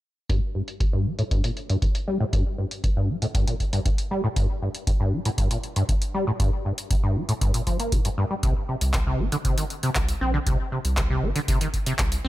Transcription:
0.30 G2, kick, closed hi-hat
0.55 G2
0.68 closed hi-hat
0.80 G2, kick, closed hi-hat
0.93 G2
1.06 G3
1.19 A2, closed hi-hat
1.31 G2, kick, closed hi-hat
1.44 A#2, closed hi-hat
1.57 closed hi-hat
1.70 G2, closed hi-hat
1.82 G2, kick, closed hi-hat
1.95 closed hi-hat
2.08 G3
2.20 A2
2.33 G2, kick, closed hi-hat
2.58 G2
2.71 closed hi-hat
2.84 G2, kick, closed hi-hat
2.96 G2
3.09 G3
3.22 A2, closed hi-hat
3.35 G2, kick, closed hi-hat
3.47 A#2, closed hi-hat
3.60 kick, closed hi-hat
3.73 G2, closed hi-hat
3.85 G2, kick, closed hi-hat
3.98 closed hi-hat
4.11 G3
4.24 A2
4.36 G2, kick, closed hi-hat
4.62 G2
4.75 closed hi-hat
4.87 G2, kick, closed hi-hat
5.00 G2
5.13 G3
5.25 A2, closed hi-hat
5.38 G2, kick, closed hi-hat
5.51 A#2, closed hi-hat
5.63 closed hi-hat
5.76 G2, closed hi-hat
5.89 G2, kick, closed hi-hat
6.02 closed hi-hat
6.14 G3
6.27 A2
6.40 G2, kick, closed hi-hat
6.65 G2
6.78 closed hi-hat
6.91 G2, kick, closed hi-hat
7.03 G2
7.16 G3
7.29 A2, closed hi-hat
7.41 G2, kick, closed hi-hat
7.54 A#2, closed hi-hat
7.67 F3, kick, closed hi-hat
7.80 A#3, closed hi-hat
7.92 G2, kick, closed hi-hat
8.05 G2, closed hi-hat
8.18 G2
8.30 G3
8.43 C2 C3, kick, closed hi-hat
8.69 C3
8.81 C2, closed hi-hat
8.94 C3, kick, clap, closed hi-hat
9.07 C3
9.19 G1 C4
9.32 D3, closed hi-hat
9.45 C3, kick, closed hi-hat
9.58 D#3, closed hi-hat
9.70 closed hi-hat
9.83 C3, closed hi-hat
9.95 C2 C3, kick, clap, closed hi-hat
10.09 closed hi-hat
10.21 A#1 C4
10.34 D3
10.46 C2 C3, kick, closed hi-hat
10.72 C3
10.85 C2, closed hi-hat
10.97 C3, kick, clap, closed hi-hat
11.10 C3
11.23 G1 C4
11.36 D3, closed hi-hat
11.48 C3, kick, closed hi-hat
11.61 D#3, closed hi-hat
11.74 kick, closed hi-hat
11.86 C3, closed hi-hat
11.99 C2 C3, kick, clap, closed hi-hat
12.12 closed hi-hat
12.24 A#1 C4

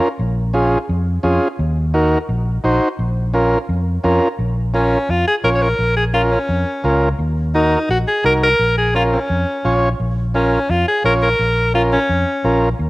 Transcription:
0.19 A#1
0.54 C#4 F4 G#4
0.89 F2
1.23 F2 C#4 F4 G#4
1.59 D#2
1.94 D#4 F#4 A#4
2.29 A#1
2.64 A#1 D#4 F#4 C5
2.99 A#1
3.33 C#4 F4 A#4
3.69 F2
4.04 F2 C#4 F4 A#4
4.39 A#1
4.74 C#4 F4 A#4
5.09 F2 F4
5.28 G#4
5.43 A#1 C#4 F4 A#4 C#5
5.55 C#5
5.62 A#4
5.79 A#1
5.97 G#4
6.14 C#4 F4 A#4
6.31 C#4
6.49 F2
6.84 C#2 C#4 F4 A#4
7.19 D#2
7.54 D#4 F#4 A#4
7.89 A#1 F#4
8.08 G#4
8.24 C2 D#4 F#4 A#4
8.43 A#4
8.59 A#1
8.78 G#4
8.94 C#4 F4 A#4
9.13 C#4
9.30 F2
9.65 A#1 C#4 F4 C#5
10.00 A#1
10.34 C#4 F4 A#4
10.70 F2 F4
10.88 G#4
11.04 A#1 C#4 F4 A#4 C#5
11.23 A#4
11.39 A#1
11.74 C#4 F4 A#4
11.93 C#4
12.09 F2
12.44 A#1 C#4 F4 A#4
12.79 D#2

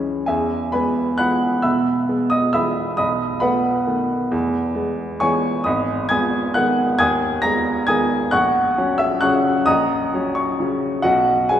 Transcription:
Already playing: C#2 E3 G#3 C#4
0.26 E2 G#4 E5 G#5
0.72 G#3 B3 B4 G#5 B5
1.18 E3 G#3 B3 F#5 B5 F#6
1.62 B2 E5 B5 E6
2.09 G#3 B3
2.30 D#5 D#6
2.53 E3 G#3 B3 E5 B5 E6
2.97 B1 D#5 B5 D#6
3.40 A3 B3 B4 F#5 B5
3.87 D#3 A3 B3
4.32 E2
4.75 G#3 B3
5.20 E3 G#3 B3 C#5 G#5 C#6
5.64 G#1 D#5 B5 D#6
6.09 G#3 B3 G#5 D#6 G#6
6.54 D#3 G#3 B3 F#5 F#6
6.99 D#2 G#5 D#6 G#6
7.42 G#3 B3 A#5 A#6
7.87 D#3 G#3 B3 G#5 D#6 G#6
8.31 A#1 F#5 C#6 F#6
8.78 F#3 C#4
8.98 E5 E6
9.21 C#3 F#3 C#4 F#5 C#6 F#6
9.66 A#1 D#5 A#5 D#6
10.13 F#3 C#4
10.35 C#5 C#6
10.59 C#3 F#3 C#4
11.02 B1 F#4 D#5 F#5
11.49 F#3 B3 G#4 G#5

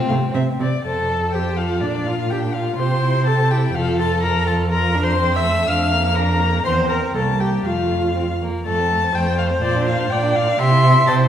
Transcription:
Already playing: C4
0.08 C3 A3 F5
0.34 C3 C4 E5
0.59 C3 C4 D5
0.84 F2 A4 C5 A5
1.09 A4
1.33 G4 C5 G5
1.56 F4 A4 F5
1.80 A#2 D4 D5
2.05 F4 F5
2.30 D4 G4 G5
2.54 F4 F5
2.77 C3 G4 C5 C6
3.03 E4
3.26 G4 A4 A5
3.51 E4 G4 G5
3.75 F2 F4 A4 F5
3.99 F4 A4 A5
4.23 A4 A#4 A#5
4.47 F4 A4 A5
4.71 F4 A#4 A#5
4.95 D4
5.03 C5 C6
5.19 C4
5.35 E5 E6
5.44 A3
5.67 F2 D4 F5 F6
5.92 A#3
6.15 D4 A#4 A#5
6.41 A#3
6.65 E2 C4 C5 C6
6.89 A#4 A#5
7.15 C2 A#3 A4 A5
7.40 G4 G5
7.65 F2 A3 F4 F5
8.16 C4
8.42 A#3
8.66 F2 A3 A4 A5
8.80 C4
8.92 A3
9.04 C4
9.15 F2 A3 C5 G5
9.28 C4
9.38 A3 F5
9.51 C4
9.61 A#2 F4 D5
9.76 D4
9.87 F4 F5
9.99 D4
10.10 A#2 F4 D5 G5
10.23 D4
10.35 F4 F5
10.48 D4
10.59 C3 G4 E5 C6
10.71 E4
10.83 G4
10.95 E4
11.06 C3 G4 C5 A5
11.19 E4

